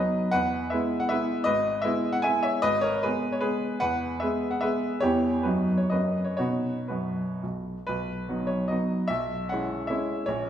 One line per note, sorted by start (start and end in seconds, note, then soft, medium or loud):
0.00 0.30 F#3 soft
0.00 0.30 B3 soft
0.00 0.31 D#4 soft
0.00 0.31 B4 soft
0.00 0.33 D#5 medium
0.31 0.72 E2 soft
0.31 0.69 B4 medium
0.31 0.72 F#5 medium
0.70 1.08 G#3 soft
0.70 1.08 B3 soft
0.70 1.08 E4 soft
0.70 1.00 B4 soft
0.70 1.01 E5 medium
1.00 1.11 F#5 medium
1.09 1.44 G#3 soft
1.09 1.44 B3 soft
1.09 1.45 E4 soft
1.09 1.44 B4 medium
1.09 1.47 E5 medium
1.44 1.84 G#1 medium
1.44 1.82 B4 medium
1.44 1.84 D#5 medium
1.82 2.21 G#3 soft
1.82 2.21 B3 soft
1.82 2.21 E4 soft
1.82 2.13 B4 medium
1.82 2.14 E5 medium
2.13 2.24 F#5 medium
2.22 2.61 G#3 soft
2.22 2.61 B3 soft
2.22 2.61 E4 soft
2.22 2.41 E5 medium
2.22 2.44 G#5 medium
2.43 2.63 C#5 medium
2.43 2.64 E5 medium
2.62 3.03 G#1 medium
2.62 2.82 B4 medium
2.62 2.83 D#5 loud
2.81 3.03 A#4 medium
2.81 3.04 C#5 medium
3.03 3.41 G#3 soft
3.03 3.41 B3 soft
3.03 3.33 G#4 medium
3.03 3.34 B4 medium
3.32 3.44 C#5 medium
3.41 3.78 G#3 soft
3.41 3.78 B3 soft
3.41 3.78 G#4 medium
3.41 3.79 B4 medium
3.80 4.21 E2 soft
3.80 4.18 B4 medium
3.80 4.21 F#5 medium
4.20 4.59 G#3 soft
4.20 4.60 B3 soft
4.20 4.60 G#4 soft
4.20 4.51 B4 soft
4.20 4.52 E5 medium
4.51 4.62 F#5 medium
4.61 4.98 G#3 soft
4.61 4.99 B3 soft
4.61 4.99 G#4 soft
4.61 4.99 B4 medium
4.61 5.01 E5 medium
5.00 5.45 E2 soft
5.00 5.42 G3 soft
5.00 5.42 B3 soft
5.00 5.43 E4 soft
5.00 5.43 G4 medium
5.00 5.45 C#5 medium
5.43 5.89 F#2 soft
5.43 5.87 F#3 soft
5.43 5.87 B3 soft
5.43 5.87 D#4 soft
5.43 5.76 F#4 soft
5.43 5.78 B4 soft
5.78 5.90 C#5 medium
5.90 6.38 F#2 soft
5.90 6.36 F#3 soft
5.90 6.36 A#3 soft
5.90 6.36 C#4 soft
5.90 6.24 B4 soft
5.90 6.26 D#5 medium
6.24 6.35 C#5 medium
6.37 6.75 B2 soft
6.37 6.80 B3 soft
6.37 6.80 D#4 soft
6.37 6.87 F#4 medium
6.37 6.89 C#5 medium
6.88 7.27 F#2 soft
6.88 7.39 F#4 soft
6.88 7.42 B4 soft
7.43 7.75 B1 soft
7.87 8.28 B1 soft
7.87 8.49 B4 medium
8.29 8.67 F#3 soft
8.29 8.67 B3 soft
8.29 8.67 D#4 soft
8.47 8.69 C#5 medium
8.68 9.06 F#3 soft
8.68 9.06 B3 soft
8.68 9.07 D#4 soft
8.68 9.09 D#5 medium
9.08 9.49 B1 soft
9.08 9.49 E5 medium
9.49 9.86 G#3 soft
9.49 9.86 C#4 soft
9.49 9.87 E4 soft
9.49 9.89 F#5 medium
9.87 10.24 G#3 soft
9.87 10.24 C#4 soft
9.87 10.24 E4 soft
9.87 10.26 E5 medium
10.26 10.50 A#1 soft
10.26 10.50 C#5 medium